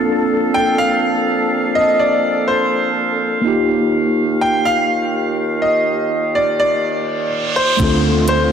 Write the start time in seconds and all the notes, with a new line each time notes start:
Already playing: A#2 F3 A#3 C4 D4 F4 A4 F5
0.54 G5
0.78 F5
1.75 D#5
1.99 D5
2.48 C5
3.41 D#2 D#3 A#3 D#4 G4
3.46 F4 G4
4.41 G5
4.65 F5
5.62 D#5
5.86 reverse cymbal
6.35 D5
6.60 D5
7.56 C5
7.77 D2 D3 A3 C4 D4 F4, kick, closed hi-hat, downlifter
7.82 F4 A4
8.28 C5, closed hi-hat